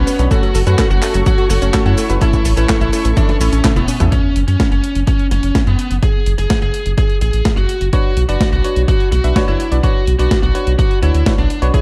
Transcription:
Already playing: B3 C#4 D4 F#4 B4 F#5 B5
0.07 B3, open hi-hat, cabasa
0.19 B1 F#3 B3 D4 F#4 C#5, closed hi-hat, cabasa
0.31 F#3 A3 C#4 F#4 A4 C#5 C#6, kick, closed hi-hat, cabasa
0.43 F#3, closed hi-hat
0.55 F#1 A4, open hi-hat, cabasa
0.67 F#2 A3 C#4 F#4 B4, closed hi-hat, cabasa
0.79 A4, kick, snare, clap, closed hi-hat, cabasa
0.90 F#1 F#4 F#5, cabasa
1.02 A3 C#4 F#4 A4, clap, open hi-hat, cabasa
1.14 F#1 F#3, closed hi-hat, cabasa
1.26 F#3 F#4, kick, closed hi-hat, cabasa
1.38 F#3, closed hi-hat
1.50 F#1 F#4 A4, snare, open hi-hat, cabasa
1.62 F#1 A3 C#4 F#4 C#5, closed hi-hat, cabasa
1.74 A3 C#4 F#4 A4, kick, snare, clap, closed hi-hat, cabasa
1.86 F#2 E4 F#5, closed hi-hat
1.98 A3, open hi-hat, cabasa
2.10 F#1 F#3 A3 C#4 F#4 B4, closed hi-hat, cabasa
2.21 E3 A3 C#4 E4 A4 E5 C#6, kick, closed hi-hat, cabasa
2.33 E3, kick, closed hi-hat, cabasa
2.45 A1 A4, open hi-hat, cabasa
2.57 A1 A3 C#4 E4 B4, closed hi-hat, cabasa
2.69 A4, kick, snare, clap, closed hi-hat, cabasa
2.81 A1 E4 E5, closed hi-hat, cabasa
2.93 A3 C#4 E4 A4, open hi-hat, cabasa
3.05 A1 E3, closed hi-hat, cabasa
3.17 E3 D4, kick, closed hi-hat, cabasa
3.29 E3, snare, closed hi-hat
3.40 A1 A3 C#4 E4 A4, open hi-hat, cabasa
3.52 A1 C#4, closed hi-hat, cabasa
3.64 A3 C#4 E4 A4, kick, snare, clap, closed hi-hat, high tom, cabasa
3.76 E1 B3 E4, closed hi-hat, high tom, cabasa
3.88 C#4, open hi-hat, cabasa
4.00 A1 E3 A3 C#4 E4 A4, closed hi-hat, mid tom, cabasa
4.12 C#4, kick, closed hi-hat
4.36 F#1, closed hi-hat
4.48 F#2 C#4, closed hi-hat
4.60 kick, snare, closed hi-hat
4.72 F#1 C#4, closed hi-hat
4.84 closed hi-hat
4.95 F#1, closed hi-hat
5.07 C#4, kick, closed hi-hat
5.19 closed hi-hat
5.31 F#1 C#4, snare, closed hi-hat
5.43 F#1, closed hi-hat
5.55 kick, snare, closed hi-hat
5.67 F#2 B3, closed hi-hat
5.79 closed hi-hat
5.91 F#1, closed hi-hat
6.03 G#4, kick, closed hi-hat
6.26 F#1, closed hi-hat
6.38 F#1 G#4, closed hi-hat
6.50 kick, snare, closed hi-hat
6.62 F#1 G#4, closed hi-hat
6.74 closed hi-hat
6.86 F#1, closed hi-hat
6.98 G#4, kick, closed hi-hat
7.09 closed hi-hat
7.21 A1 G#4, closed hi-hat
7.33 A1, closed hi-hat
7.45 kick, snare, closed hi-hat
7.57 F#1 F#4, closed hi-hat
7.69 closed hi-hat
7.81 F#1, closed hi-hat
7.93 D4 F#4 B4 C#5, kick, closed hi-hat
8.17 B1, closed hi-hat
8.29 F#1 D4 F#4 B4 D5, closed hi-hat
8.41 kick, snare, closed hi-hat
8.52 B1 F#4, closed hi-hat
8.64 D4 F#4 B4 C#5, closed hi-hat
8.76 B1, closed hi-hat
8.88 F#4, kick, closed hi-hat
9.00 closed hi-hat
9.12 B1 F#4, snare, closed hi-hat
9.24 B1 D4 F#4 B4 E5, closed hi-hat
9.36 D4 F#4 B4 C#5, kick, snare, closed hi-hat
9.48 F#1 E4, closed hi-hat
9.60 closed hi-hat
9.72 B1 D4 F#4 B4 D5, closed hi-hat
9.83 D4 F#4 B4 C#5, kick, closed hi-hat
10.07 B1, closed hi-hat
10.19 B1 D4 F#4 B4 D5, closed hi-hat
10.31 kick, snare, closed hi-hat
10.43 B1 F#4, closed hi-hat
10.55 D4 F#4 B4 C#5, closed hi-hat
10.67 B1, closed hi-hat
10.79 F#4, kick, closed hi-hat
10.91 closed hi-hat
11.02 D2 D4 E4 F#4 B4 C#5, closed hi-hat
11.14 D2, closed hi-hat
11.26 D4 F#4 B4 C#5, kick, snare, closed hi-hat
11.38 B1 D4, closed hi-hat
11.50 closed hi-hat
11.62 B1 D4 F#4 B4 C#5, closed hi-hat
11.74 E4 G#4 B4 C#5 E5 B5, kick, closed hi-hat

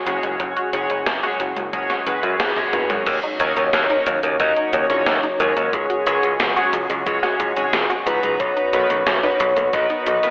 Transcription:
Already playing: C#3 F#3 G#3 F#4 G#4
0.06 F#1 F#3 G#3 C#4 F#4 G#4 C#5, closed hi-hat
0.23 F#1 G#3, closed hi-hat
0.40 F#1 F#3, kick, closed hi-hat
0.57 F#4, closed hi-hat
0.73 F#1 F#3 G#3 C#4 F#4 G#4 C#5, closed hi-hat
0.90 F#1 G#3, closed hi-hat
1.06 F#1 F#3, kick, snare, closed hi-hat
1.23 G#3 C#4 F#4 G#4 C#5, closed hi-hat
1.40 F#1 F#3, closed hi-hat
1.57 F#1 G#3, closed hi-hat
1.73 F#1 F#3 G#3 C#4 F#4 G#4 C#5, kick, closed hi-hat
1.90 F#4, snare, closed hi-hat
2.07 F#1 F#3 G#3 C#4 F#4 G#4 B4, closed hi-hat
2.23 F#2 F#4, closed hi-hat
2.40 F#1 F#4 G#4, kick, snare, closed hi-hat
2.56 G#3 C#4 F#4 G#4 C#5, closed hi-hat, high tom
2.73 F#1 F#4 B4, closed hi-hat, mid tom
2.90 F#2 G#3, closed hi-hat, mid tom
3.06 D#2 C#3 F#3 A#3 D#4 F#4 C#5, kick, closed hi-hat, crash, shaker
3.23 D#4, closed hi-hat
3.40 D#2 F#3 C#4 D#4 F#4 A#4 C#5, closed hi-hat, shaker
3.57 D#2 A#3, closed hi-hat, shaker
3.73 D#2 F#3, snare, closed hi-hat, shaker
3.90 C#4 D#4 F#4 A#4 C#5, closed hi-hat
4.06 D#2 F#3, closed hi-hat, shaker
4.23 D#2 A#3, closed hi-hat, shaker
4.39 D#2 F#3 C#4 D#4 F#4 A#4 C#5 D#5, kick, closed hi-hat, shaker
4.56 D#4, closed hi-hat
4.73 D#2 F#3 C#5, closed hi-hat, shaker
4.90 A#1 A#3 C#4 D#4 F#4 A#4 C#5, closed hi-hat, shaker
5.06 D#2 F#3, snare, closed hi-hat, shaker
5.23 D#4, closed hi-hat
5.40 D#2 F#3 G#3 C#4 F#4 G#4 A#4 C#5, closed hi-hat, shaker
5.57 D#2 A#3, closed hi-hat, shaker
5.73 C#2 C#3 F#3 G#3 G#4, kick, closed hi-hat, shaker
5.90 F#4, closed hi-hat
6.07 C#2 F#3 G#3 C#4 F#4 G#4 C#5, closed hi-hat, shaker
6.23 C#2 G#3, closed hi-hat, shaker
6.40 C#2 F#3 F#4, snare, closed hi-hat, shaker
6.56 G#3 C#4 F#4 G#4 C#5, closed hi-hat, shaker
6.73 C#2 F#3, closed hi-hat, shaker
6.90 C#2 G#3, closed hi-hat, shaker
7.06 C#2 F#3 G#3 C#4 F#4 G#4 C#5, kick, closed hi-hat, shaker
7.23 F#4, snare, closed hi-hat
7.40 C#2 F#3, kick, closed hi-hat, shaker
7.56 G#1 G#3 C#4 F#4 G#4 C#5, closed hi-hat, shaker
7.73 C#2 F#3 G#4, snare, closed hi-hat, shaker
7.90 F#4, closed hi-hat, shaker
8.06 C#2 F#3 B3 D#4 F#4 B4 A#5, closed hi-hat, shaker
8.23 C#2 G#3, closed hi-hat, shaker
8.40 B1 B2 F#3 B3 C#5, kick, closed hi-hat, shaker
8.57 D#4, closed hi-hat
8.73 B1 F#3 B3 D#4 F#4 A#4 B4, closed hi-hat, shaker
8.90 B1 A#3, closed hi-hat, shaker
9.07 B1 F#3, snare, closed hi-hat, shaker
9.23 B3 D#4 F#4 A#4 B4, closed hi-hat
9.40 B1 F#3, closed hi-hat, shaker
9.57 B1 A#3, closed hi-hat, shaker
9.73 B1 F#3 B3 D#4 F#4 A#4 B4 D#5, kick, closed hi-hat, shaker
9.90 D#4, closed hi-hat
10.07 B1 F#3 D#5, closed hi-hat, shaker
10.23 F#1 A#3 B3 D#4 F#4 A#4 B4, closed hi-hat, shaker

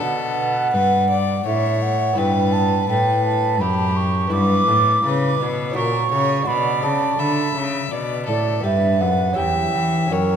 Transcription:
Already playing: B3 A4
0.00 B2 D4 B4 F#5
0.74 G2 B4
1.10 D5
1.46 A2 C#5 E5
1.82 F#5
2.13 B3 E4 B4
2.18 G2 B4 G5
2.53 A5
2.89 A2 B4 G5
3.26 A5
3.60 F#2 G4 B5
3.96 C#6
4.27 B3 E4 B4
4.32 G2 B4 D6
4.68 A2
5.04 C#3 B4
5.39 B2
5.71 C#4 F#4
5.76 A#2 A#4 C#6
6.11 C#3 C#5
6.42 D4 F#4
6.47 B2 D5 B5
6.83 C#3 A5
7.19 D3 E5 B5
7.55 C#3
7.91 B2 D5
8.26 A2 A4 D5
8.60 G2 B3 D4 G4 B4
8.65 G2 E5
9.01 F#2 F#5
9.33 C#4 E4 G4
9.37 E2 E5 G5
9.74 E3
10.07 C#4 F#4
10.11 F#2 A#4 C#5

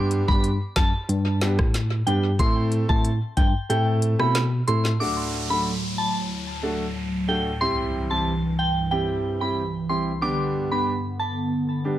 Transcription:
Already playing: G2 G3 B3 D4 G4
0.11 closed hi-hat
0.28 G2 G3 B3 D4 G4 B5, kick
0.44 closed hi-hat
0.76 F#2 A5, kick, snare, closed hi-hat
1.09 G2, closed hi-hat
1.41 G3 B3 D4 G4, snare, closed hi-hat
1.59 A2, kick, cross-stick
1.74 snare, closed hi-hat
2.06 G2 G3 B3 D4 G4 G5, closed hi-hat
2.39 A2 A3 C4 E4 A4 C6, kick, closed hi-hat
2.72 closed hi-hat
2.89 A2 A3 C4 E4 A4 A5, kick
3.05 closed hi-hat
3.37 G2 G5, kick, closed hi-hat
3.69 A2 A3 C4 E4 A4 G5, closed hi-hat
4.02 closed hi-hat
4.19 B2 A3 C4 E4 A4 B5, cross-stick
4.35 snare, closed hi-hat
4.67 A2 A3 C4 E4 A4 C6, closed hi-hat
4.85 snare
5.00 D2 A2 F#3 A3 D4 F#4 A4 D6, downlifter
5.50 A3 D4 F#4 A4 B5
5.98 A5
6.63 A3 D4 F#4 A4
7.28 A3 D4 F#4 A4 G5
7.60 C2 G2 E3 G3 C4 E4 G4 C6
8.10 G3 C4 E4 G4 A5
8.59 G5
8.91 G3 C4 E4 G4 G5
9.41 G3 C4 E4 G4 B5
9.89 G3 C4 E4 G4 C6
10.21 D3 G3 B3 D4 G4 D6
10.71 G3 B3 D4 G4 B5
11.19 A5
11.84 G3 B3 D4 G4

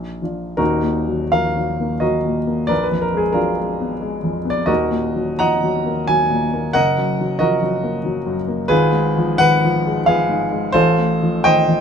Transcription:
Already playing: A#1 A#4
0.22 F3 D4 F4
0.57 D#1 D#2 D#4 F#4 A#4
0.83 A#2
1.08 F#3
1.32 F3 A#4 F5
1.57 F#3
1.80 A#3
2.00 F#3 F#4 A#4 D#5
2.25 A#2
2.47 A#3
2.67 A#1 A#4 B4 D5
2.83 B4
2.92 F2
3.02 A#4
3.14 G#3 G#4
3.33 F#3 D4 F4 A#4
3.57 G#3
3.80 B3
4.01 G#3
4.23 F2
4.45 B3
4.50 D5
4.66 D#1 D#2 F#4 A#4 D#5
4.91 A#2
5.16 F#3
5.39 F3 D#5 F#5 A#5
5.64 F#3
5.86 A#3
6.07 F#3 G#5
6.30 A#2
6.54 A#3
6.73 F#1 A#4 D#5 F#5
6.98 F#2
7.20 F#3
7.39 F3 F#4 A#4 D#5
7.63 F#3
7.84 A#3
8.05 F#3
8.26 F#2
8.48 A#3
8.68 G#1 F4 G#4 B4
8.92 G#2
9.18 F3
9.38 D#3 B4 F#5
9.65 F3
9.87 G#3
10.06 F3 G#4 B4 F5
10.29 G#2
10.52 G#3
10.72 A1 F4 A4 C5
10.98 A2
11.23 F3
11.44 D#3 C5 D#5 G5
11.68 F3

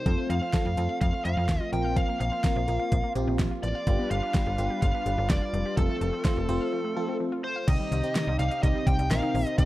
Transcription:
Already playing: C5
0.06 F2 F3 A3 C4 F4 A4, kick, closed hi-hat
0.18 A3
0.30 F2 F3 F5, closed hi-hat
0.41 C4
0.53 F3 C4 F4 A4, kick, snare, closed hi-hat
0.65 F2 F4
0.77 F2 C4 F4 A4, closed hi-hat
0.89 F5
1.01 F2 F3 F5, kick, closed hi-hat
1.13 A3
1.25 F2 F3 F5, closed hi-hat
1.37 F2 C4
1.49 D#2 F3, kick, snare, closed hi-hat
1.61 F4
1.72 A#1 F3 A#3 C4 F4 A#4 G5, closed hi-hat
1.84 F5
1.96 F3 F5, kick, closed hi-hat
2.08 A#3
2.20 A#1 F3 F5, closed hi-hat
2.32 C4
2.44 F3 C4 F4 A#4, kick, snare, closed hi-hat
2.56 A#1 F4
2.68 A#1 C4 F4 A#4, closed hi-hat
2.80 F5
2.91 A#1 F3, kick, closed hi-hat
3.03 A#3
3.15 A#1 F3 C4 F4 G4, closed hi-hat
3.27 A#1 C4
3.39 A#1 F3, kick, snare, closed hi-hat
3.51 F4
3.63 A1 F3 D5, closed hi-hat
3.75 F5
3.87 G1 G3 B3 D4 F4 G4 B4, kick, closed hi-hat
3.99 B3
4.11 G1 G3 F5, closed hi-hat
4.23 D4
4.34 G3 B3 F4 G4, kick, snare, closed hi-hat
4.47 G1 F4
4.58 G1 B3 F4 G4, closed hi-hat
4.70 G4
4.82 G1 G3 F5, kick, closed hi-hat
4.94 B3
5.06 G1 G3, closed hi-hat
5.18 G1 D4
5.29 F1 G3 D5, kick, snare, closed hi-hat
5.42 F4
5.53 F1 G3, closed hi-hat
5.66 G4
5.77 F1 F3 A3 C4 F4 A4, kick, closed hi-hat
5.89 A3
6.01 F1 F3, closed hi-hat
6.13 C4
6.25 F3 C4 F4 C5, kick, snare, closed hi-hat
6.37 F1 F4
6.49 F1 C4 F4 C5, closed hi-hat
6.61 F5
6.72 F3
6.84 A3
6.96 F3 C4 F4 A4
7.08 C4
7.20 F3
7.32 F4
7.44 F3 C5
7.56 F5
7.68 C2 C3 D#3 C4 D#4 G4 D#5, kick, closed hi-hat, crash
7.80 G3
7.92 C2 D#3, closed hi-hat
8.04 C4 D#4 G4, closed hi-hat
8.15 D#3, snare, closed hi-hat
8.27 C2 D#4
8.39 C2 C4 D#4 G4 F5, closed hi-hat
8.51 D#5, closed hi-hat
8.63 C2 D#3 C4 D#4 G4 D#5, kick, closed hi-hat
8.75 G3
8.86 C2 D#3 G5, kick, closed hi-hat
8.99 C2, closed hi-hat
9.10 A#1 D#3 C4 D#4 A#4 F5, snare, closed hi-hat
9.23 D#4
9.34 A#1 D#3, open hi-hat
9.47 D#5, closed hi-hat
9.58 C2 D#3 C4 D#4 G4 A4 D#5, kick, closed hi-hat

